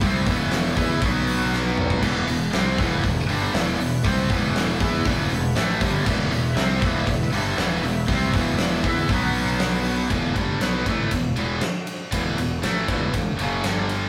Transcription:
Already playing: E4 B4 E5
0.01 C2 C3 G3 C4, kick, open hi-hat
0.26 E1 E2 B2 E3, kick, open hi-hat
0.51 snare, open hi-hat
0.76 E2 E3 B3 E4, kick, open hi-hat
1.02 B1 B2 F#3 B3 F#4 C#5, kick, open hi-hat
1.27 open hi-hat
1.53 snare
1.77 mid tom
1.90 kick
2.02 E1 E2 B2 E3 E4 B4 F#5, kick, crash
2.27 E1 E2 B2, open hi-hat
2.53 C2 C3 G3 C4, snare, open hi-hat
2.78 E1 E2 B2 E3, kick, open hi-hat
3.04 E1 E2 B2, kick, open hi-hat
3.28 G1 G2 D3 G3, open hi-hat
3.53 E1 E2 B2 E3, snare, open hi-hat
3.78 E1 E2 B2, open hi-hat
4.04 C2 C3 G3 C4, kick, open hi-hat
4.30 E1 E2 B2 E3, kick, open hi-hat
4.56 snare, open hi-hat
4.80 E2 E3 B3 E4, kick, snare, open hi-hat
5.05 E1 E2 B2 E3, kick, open hi-hat
5.30 E1 E2 B2, open hi-hat
5.55 A1 A2 E3 A3, snare, open hi-hat
5.80 G1 G2 D3 G3, kick, open hi-hat
6.05 E1 E2 B2 E3 E5, kick, crash
6.32 E1 E2 B2, open hi-hat
6.56 C2 C3 G3 C4, snare, open hi-hat
6.82 E1 E2 B2 E3, kick, open hi-hat
7.07 E1 E2 B2, kick, open hi-hat
7.32 G1 G2 D3 G3, open hi-hat
7.57 E1 E2 B2 E3, snare, open hi-hat
7.83 E1 E2 B2, open hi-hat
8.08 C2 C3 G3 C4, kick, open hi-hat
8.32 E1 E2 B2 E3, kick, open hi-hat
8.58 snare, open hi-hat
8.83 E2 E3 B3 E4, kick, open hi-hat
9.09 B1 B2 F#3 B3 F#4 C#5, kick, open hi-hat
9.34 open hi-hat
9.60 snare, open hi-hat
9.85 open hi-hat
10.09 E1 E2 B2 E3, kick, ride
10.35 G1 G2 D3 G3, kick, ride
10.60 B1 B2 F#3 B3, snare, ride
10.86 A1 A2 E3 A3, kick, ride
11.11 E1 E2 B2, kick, ride
11.36 E1 E2 B2 E3, ride
11.61 snare, ride
11.87 ride
12.12 E1 E2 B2 E3, kick, ride
12.38 E1 E2 B2, ride
12.63 A1 A2 E3 A3, snare, ride
12.88 E1 E2 B2 E3, kick, ride
13.13 E1 E2 B2, kick, ride
13.39 F#1 F#2 C#3 F#3, ride
13.64 G1 G2 D3 G3, snare, ride
13.89 ride

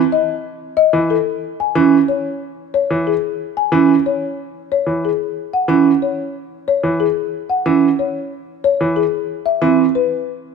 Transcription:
0.12 D#5
0.77 D#5
0.93 E3
1.10 A4
1.60 G#5
1.75 E3 C#4
2.08 C#5
2.74 C#5
2.91 E3
3.07 G#4
3.57 G#5
3.72 E3 C#4
4.06 C#5
4.72 C#5
4.87 E3
5.05 G#4
5.54 F#5
5.68 E3 C#4
6.02 C#5
6.68 C#5
6.83 E3
7.00 G#4
7.50 F#5
7.66 E3 C#4
7.99 C#5
8.64 C#5
8.81 E3
8.96 G#4
9.46 E5
9.62 E3 C4
9.95 B4

